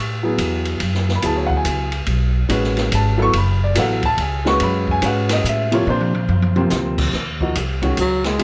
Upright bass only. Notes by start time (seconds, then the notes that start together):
Already playing: A2
0.38 E2
0.80 F#2
1.23 D2
1.65 C#2
2.07 B1
2.49 A1
2.92 G#1
3.33 F#1
3.75 A1
4.18 C#2
4.61 F#2
5.02 G#2
5.44 A2
5.87 A#2
6.28 F#2
6.71 D2
7.13 D#2
7.56 C2
7.98 C#2